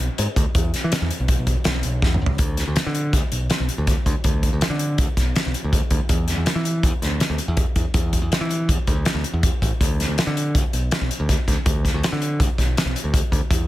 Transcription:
0.00 B1
0.18 G#2, closed hi-hat
0.36 D2, kick, closed hi-hat
0.55 E2, kick, closed hi-hat
0.74 snare, closed hi-hat
0.84 E3
0.92 snare, closed hi-hat
1.02 E2
1.11 closed hi-hat
1.20 B1
1.28 kick, closed hi-hat
1.39 B1
1.47 kick, closed hi-hat
1.64 B1, snare, closed hi-hat
1.83 B1, closed hi-hat
2.02 E2, kick, snare
2.14 mid tom
2.22 C#2
2.26 floor tom
2.38 D2, kick, closed hi-hat
2.57 snare, closed hi-hat
2.68 D2
2.76 snare, closed hi-hat
2.87 D3
2.95 closed hi-hat
3.13 D2, kick, snare, closed hi-hat
3.32 B1, closed hi-hat
3.50 snare, closed hi-hat
3.60 B1
3.69 closed hi-hat
3.78 D2
3.87 kick, snare, closed hi-hat
4.06 D2, kick, closed hi-hat
4.24 D2, kick, closed hi-hat
4.43 kick, closed hi-hat
4.53 D2
4.61 snare, closed hi-hat
4.70 D3
4.79 closed hi-hat
4.98 D2, kick, closed hi-hat
5.17 B1, kick, snare, closed hi-hat
5.36 snare, closed hi-hat
5.46 B1
5.54 closed hi-hat
5.64 D2
5.73 kick, closed hi-hat
5.91 D2, kick, closed hi-hat
6.09 E2, kick, closed hi-hat
6.28 snare, closed hi-hat
6.37 E2
6.46 snare, closed hi-hat
6.55 E3
6.65 closed hi-hat
6.83 E2, kick, closed hi-hat
7.02 D2, snare, closed hi-hat
7.20 snare, closed hi-hat
7.30 D2
7.38 closed hi-hat
7.48 E2
7.57 kick, closed hi-hat
7.76 E2, kick, closed hi-hat
7.94 E2, kick, closed hi-hat
8.13 kick, closed hi-hat
8.22 E2
8.32 snare, closed hi-hat
8.41 E3
8.51 closed hi-hat
8.68 E2, kick, closed hi-hat
8.87 D2, kick, closed hi-hat
9.05 snare, closed hi-hat
9.14 D2
9.24 closed hi-hat
9.33 E2
9.43 kick, closed hi-hat
9.62 A1, kick, closed hi-hat
9.81 D2, kick, closed hi-hat
10.00 snare, closed hi-hat
10.08 D2
10.18 snare, closed hi-hat
10.27 D3
10.37 closed hi-hat
10.55 D2, kick, closed hi-hat
10.73 B1, closed hi-hat
10.91 snare, closed hi-hat
11.01 B1
11.11 closed hi-hat
11.20 D2
11.29 kick, snare, closed hi-hat
11.48 D2, kick, snare, closed hi-hat
11.66 D2, kick, closed hi-hat
11.85 kick, snare, closed hi-hat
11.94 D2
12.03 snare, closed hi-hat
12.12 D3
12.22 closed hi-hat
12.40 D2, kick, closed hi-hat
12.58 B1, kick, snare, closed hi-hat
12.77 snare, closed hi-hat
12.85 B1
12.96 closed hi-hat
13.04 D2
13.14 kick, closed hi-hat
13.32 D2, kick, closed hi-hat
13.50 E2, kick, closed hi-hat

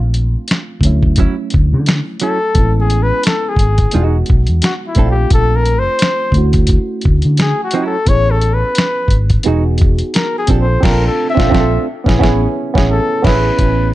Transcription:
Already playing: A#1 A3 C4 D4 F4
0.14 closed hi-hat
0.48 finger snap, snare, closed hi-hat
0.81 D2 F3 A3, kick, closed hi-hat
0.85 F#3 C#4 E4
1.03 kick
1.16 F#3 C#4, kick, closed hi-hat
1.20 E4
1.50 kick, closed hi-hat
1.55 D2
1.73 D3
1.86 finger snap, muted hollow-body jazz guitar stroke, snare, closed hi-hat
2.20 F#3 C#4 E4 A4, closed hi-hat
2.54 A1 G#3 B3 C4, kick, closed hi-hat
2.59 E4
2.64 C#4
2.80 G#4
2.90 closed hi-hat
3.03 B4
3.23 A4, finger snap, snare, closed hi-hat
3.49 G#4
3.56 G#1, kick, closed hi-hat
3.78 kick, closed hi-hat
3.91 E1 G#3 B3 D#4 E4 F#4, closed hi-hat
4.01 F#4
4.26 kick, closed hi-hat
4.31 B1
4.47 E2, closed hi-hat
4.62 F#4, finger snap, muted hollow-body jazz guitar stroke, snare, closed hi-hat
4.87 E4
4.95 A#1 A3 C4 D4, kick, closed hi-hat
4.99 E4 A4
5.06 F4
5.10 G4
5.30 A#1 A4, kick, closed hi-hat
5.56 A#4
5.66 closed hi-hat
5.79 C5
5.99 finger snap, snare, closed hi-hat
6.32 D2 A3 C#4, kick, closed hi-hat
6.37 E4 F#4
6.53 kick, closed hi-hat
6.67 kick, closed hi-hat
7.01 kick, closed hi-hat
7.06 D2
7.22 D3, closed hi-hat
7.37 G#4, finger snap, muted hollow-body jazz guitar stroke, snare, closed hi-hat
7.63 F#4
7.71 F#3 C#4, closed hi-hat
7.75 E4
7.86 A4
8.05 A1 B3 C#4 E4 C#5, kick, closed hi-hat
8.10 G#4
8.31 A4
8.41 closed hi-hat
8.54 B4
8.75 finger snap, snare, closed hi-hat
9.08 G#1, kick, closed hi-hat
9.30 kick, closed hi-hat
9.43 E1 G#3 B3 D#4 F#4 G#4, closed hi-hat
9.48 F#4
9.78 kick, closed hi-hat
9.99 closed hi-hat
10.14 A#4, finger snap, muted hollow-body jazz guitar stroke, snare, closed hi-hat
10.38 G#4
10.47 A#1 C4 D4 F4, kick, closed hi-hat
10.51 G4 A4
10.58 A4 C5
10.81 A#1 C4 D4 F4 A#4, kick, crash
10.85 D4 A4, snare
10.92 A4
11.07 A4
11.30 E5
11.35 A#1 C4 D4 F4, kick
11.39 C4 D4 A4, snare
11.46 C4 A4
11.51 A#1 C4 D4 F4 A4, kick, snare
11.60 A4
12.04 A1 B3 C#4 E4, kick
12.08 G#4, snare
12.19 A1 B3 C#4 E4 G#4, kick
12.23 G#4, snare
12.74 A1 B3 C#4 E4, kick
12.78 G#4, snare
12.91 A4
13.22 A1 B3 C#4 E4 B4, kick, crash
13.27 G#4, snare
13.57 A1 B3 C#4 E4, kick, closed hi-hat
13.62 G4
13.68 G#4

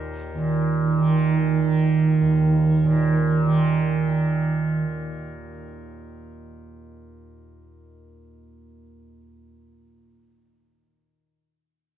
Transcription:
Already playing: D#2 A#2 D#3
0.33 A#2 D#3
0.98 D#3
1.60 D#3
2.21 D#2
2.84 A#2
3.46 D#3
4.08 D#3

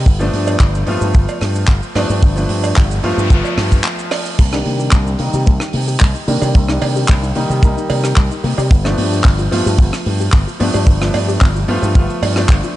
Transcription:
0.06 G1, kick, cabasa
0.19 F3 A3 B3 D4, cabasa
0.33 G2, open hi-hat
0.47 cowbell, cabasa
0.60 G1, kick, clap, cabasa
0.75 cabasa
0.86 G2 F3 A3 B3 F4, open hi-hat
1.01 G2, cabasa
1.14 G1, kick, cabasa
1.29 cowbell, cabasa
1.41 G2, cross-stick, open hi-hat
1.55 cabasa
1.68 G1, kick, clap, cabasa
1.83 cabasa
1.95 G2 F3 A3 B3 D4, cross-stick, open hi-hat, cowbell
2.10 G2, cabasa
2.22 G1, kick, noise sweep, cabasa
2.36 F3 A3 B3 D4, open hi-hat, cabasa
2.49 G2, open hi-hat
2.64 cowbell, cabasa
2.76 G1, kick, clap, cabasa
2.91 cabasa
3.03 G2 F3 A3 B3 F4, open hi-hat
3.18 G2, cabasa
3.30 G1 F3 A3 B3 F4, kick, cabasa
3.45 cowbell, cabasa
3.57 G2, cross-stick, open hi-hat
3.72 kick, cabasa
3.84 clap, cabasa
3.99 cabasa
4.11 cross-stick, open hi-hat, cowbell
4.26 cabasa
4.39 C2 A#3, kick, crash, cabasa
4.52 D#3 G3 A#3 D4 D#4, cross-stick, cabasa
4.66 C3 A#3, open hi-hat
4.80 G4, cabasa
4.91 C2 A#3, kick, clap, cabasa
5.06 D#4, cabasa
5.19 C3 D#3 G3 A#3 D#4, open hi-hat
5.33 C3 G4, cabasa
5.46 C2 A#3, kick, cabasa
5.60 D#4, cross-stick, cabasa
5.73 C3 A#3, open hi-hat
5.88 G4, cabasa
6.00 C2 A#3, kick, clap, cabasa
6.15 D#4, cabasa
6.27 C3 D#3 G3 A#3 D4, open hi-hat
6.42 C3 G4, cowbell, cabasa
6.55 C2 A#3, kick, cabasa
6.68 D#3 G3 A#3 D4 D#4, cross-stick, cabasa
6.82 C3 A#3, open hi-hat, cowbell
6.96 G4, cabasa
7.08 C2 A#3, kick, clap, cabasa
7.23 D#4, cabasa
7.35 C3 D#3 G3 A#3 D#4, open hi-hat
7.50 C3 G4, cabasa
7.62 C2 D#3 G3 A#3 D#4, kick, cabasa
7.77 D#4, cabasa
7.90 C3 A#3, open hi-hat, cowbell
8.04 G4, cross-stick, cabasa
8.16 C2 A#3, kick, clap, cabasa
8.31 D#4, cabasa
8.44 C3 A#3, open hi-hat
8.58 C3 G4, cowbell, cabasa
8.71 G1 B3, kick, cabasa
8.84 F3 A3 B3 D4 F4, cross-stick, cabasa
8.98 G2 B3, open hi-hat
9.12 G4, cabasa
9.24 G1 B3, kick, clap, cabasa
9.39 F4, cabasa
9.51 G2 F3 A3 B3 F4, open hi-hat
9.66 G2 G4, cabasa
9.79 G1 B3, kick, cabasa
9.93 F4, cross-stick, cabasa
10.06 G2 B3, open hi-hat
10.20 G4, cabasa
10.32 G1 B3, kick, clap, cabasa
10.47 F4, cabasa
10.60 G2 F3 A3 B3 D4, open hi-hat
10.74 G2 G4, cowbell, cabasa
10.87 G1 B3, kick, cabasa
11.00 F3 A3 B3 D4 F4, cross-stick, open hi-hat, cabasa
11.14 G2 B3, open hi-hat, cowbell
11.28 G4, cabasa
11.41 G1 B3, kick, clap, cabasa
11.55 F4, cabasa
11.68 G2 F3 A3 B3 F4, open hi-hat
11.82 G2 G4, cabasa
11.95 G1 F3 A3 B3 F4, kick, cabasa
12.10 F4, cabasa
12.22 G2 B3, open hi-hat, cowbell
12.36 F3 A3 B3 D4 G4, cross-stick, cabasa
12.49 G1 B3, kick, clap, cabasa
12.64 F4, cabasa

